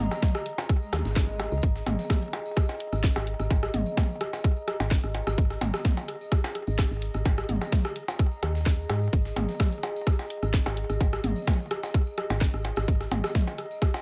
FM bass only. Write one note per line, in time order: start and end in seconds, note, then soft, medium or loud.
0.93 1.03 D#2 medium
1.05 1.48 G#1 medium
1.52 1.61 C#2 loud
1.63 1.82 G#1 loud
1.86 1.96 G#1 loud
2.93 3.11 G#1 loud
3.16 3.34 G#1 medium
3.40 3.48 G#1 medium
3.51 3.69 G#1 loud
3.74 3.84 G#1 loud
4.80 4.98 G#1 loud
5.04 5.22 G#1 medium
5.27 5.36 G#1 medium
5.38 5.57 G#1 loud
5.61 5.71 G#1 loud
6.68 6.86 G#1 loud
6.91 7.09 G#1 medium
7.15 7.23 G#1 medium
7.25 7.44 G#1 loud
7.49 7.59 G#1 loud
8.43 8.86 D#2 medium
8.90 9.08 G#2 medium
9.13 9.32 G#1 loud
9.36 9.46 G#1 loud
10.43 10.61 G#1 loud
10.66 10.84 G#1 medium
10.90 10.98 G#1 medium
11.01 11.19 G#1 loud
11.24 11.34 G#1 loud
12.30 12.48 G#1 loud
12.54 12.72 G#1 medium
12.77 12.86 G#1 medium
12.88 13.07 G#1 loud
13.11 13.21 G#1 loud